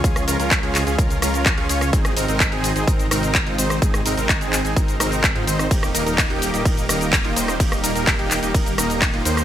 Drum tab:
RD |----------------|----------------|----------------|x---x---x---x---|
HH |xxoxxxoxxxoxxxox|xxoxxxoxxxoxxxox|xxoxxxoxxxoxxxox|xxoxxxoxxxoxxxox|
SH |xxxxx-xxxxxxx-xx|xxxxx-xxxxxxx-xx|xxxxxxxxxxxxx-xx|xxxxx-xxxxxxx-xx|
CP |----x-x-----x---|----x-------x---|----x-x-----x---|----x-------x---|
SD |-r--------r----r|-r--------r----r|-r--------r----r|-r--------r----r|
BD |o---o---o---o---|o---o---o---o---|o---o---o---o---|o---o---o---o---|

RD |x---x---x---x---|
HH |xxoxxxoxxxoxxxox|
SH |xxxxx-xxxxxxx-xx|
CP |----x-x-----x---|
SD |-r--------r----r|
BD |o---o---o---o---|